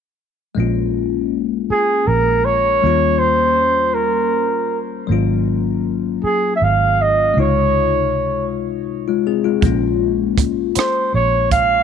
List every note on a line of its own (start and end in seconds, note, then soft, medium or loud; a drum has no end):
0.55 1.66 A#1 medium
0.55 2.78 G#3 medium
0.55 2.79 A#3 soft
0.55 2.79 C#4 medium
0.60 2.81 F4 medium
1.70 2.09 G#4 medium
1.70 muted fingered electric bass stroke soft
2.07 2.79 A#1 medium
2.07 2.47 A#4 medium
2.45 3.20 C#5 medium
2.81 5.06 D#2 medium
2.81 5.04 G3 soft
2.81 5.05 A#3 soft
2.81 5.06 C#4 soft
2.86 5.07 F4 soft
3.19 3.96 C5 medium
3.94 4.80 A#4 medium
5.07 6.19 G#1 medium
5.07 7.31 F#3 medium
5.07 7.32 A#3 medium
5.11 7.33 C#4 medium
5.11 7.33 F4 medium
6.23 6.52 G#4 medium
6.23 muted fingered electric bass stroke soft
6.56 6.65 E5 medium
6.62 7.32 G#1 medium
6.62 7.03 F5 medium
7.02 7.38 D#5 medium
7.34 9.59 C#2 medium
7.34 8.84 C3 soft
7.34 8.83 G#3 soft
7.34 8.85 D#4 soft
7.39 8.85 F4 soft
7.39 8.47 C#5 medium
9.08 9.25 G#3 soft
9.08 9.25 F4 soft
9.27 9.44 C4 soft
9.27 9.44 G#4 medium
9.44 9.60 G#3 soft
9.44 9.65 F4 medium
9.61 10.72 A#1 medium
9.61 11.83 G#3 medium
9.61 11.83 A#3 soft
9.61 11.83 C#4 medium
9.61 kick medium
9.61 closed hi-hat soft
9.66 11.83 F4 medium
10.38 kick medium
10.38 closed hi-hat medium
10.75 11.11 C5 medium
10.75 muted fingered electric bass stroke soft
10.75 cross-stick loud
10.75 closed hi-hat medium
11.14 11.83 A#1 medium
11.14 11.49 C#5 medium
11.51 11.83 F5 medium
11.51 kick medium
11.51 closed hi-hat medium